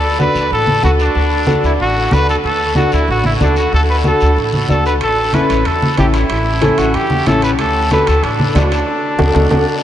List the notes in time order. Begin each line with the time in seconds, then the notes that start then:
Already playing: D2 A4
0.18 D4 F#4 A4 B4, high conga, short guiro
0.35 D2, short guiro
0.51 A1 A4, long guiro
0.67 high conga
0.83 D2 D4 F#4 A4, high conga, short guiro
0.99 D4, short guiro
1.15 D2, long guiro
1.47 D4 F#4 A4, high conga, short guiro
1.63 D2 E4, short guiro
1.79 A1 F#4, long guiro
2.11 D2 D4 F#4 A4 B4, high conga, short guiro
2.29 A4, short guiro
2.43 D2 A4, long guiro
2.75 D4 F#4 A4, high conga, short guiro
2.92 D2 E4, short guiro
3.08 A1 F#4, long guiro
3.24 E4, high conga
3.40 D2 D4 F#4 A4, high conga, short guiro
3.56 F#4, short guiro
3.72 D2 A4, long guiro
3.90 B4
4.04 D4 F#4 A4, high conga, short guiro
4.20 D2, short guiro
4.37 A1, long guiro
4.53 high conga
4.68 D2 D4 F#4 A4, high conga, short guiro
4.86 B4, short guiro
5.01 A1 A4, high timbale, long guiro
5.33 C#4 E4 A4 B4, high conga, high timbale, short guiro
5.49 A1, high timbale, short guiro
5.65 E2 A4, high timbale, long guiro
5.82 high conga
5.97 A1 C#4 E4 G4 A4, high conga, high timbale, short guiro
6.14 E4, high timbale, short guiro
6.30 A1, high timbale, long guiro
6.61 C#4 E4 A4, high conga, high timbale, short guiro
6.78 A1 F#4, high timbale, short guiro
6.94 E2 G4, high timbale, long guiro
7.10 high conga
7.26 A1 C#4 E4 A4, high conga, high timbale, short guiro
7.42 B4, high timbale, short guiro
7.59 D2 A4, high timbale, long guiro
7.91 D4 F#4 A4 B4, high conga, high timbale, short guiro
8.07 D2 A4, high timbale, short guiro
8.23 A1 D4, high timbale, long guiro
8.39 high conga
8.54 D2 D4 F#4 A4, high conga, high timbale, low timbale, short guiro
8.72 high timbale, short guiro
9.18 D2 D4 F#4 A4, high conga, high timbale, long guiro
9.34 D2 D4 F#4 A4, high conga, high timbale, long guiro
9.51 D2 D4 F#4 A4, high conga, high timbale, long guiro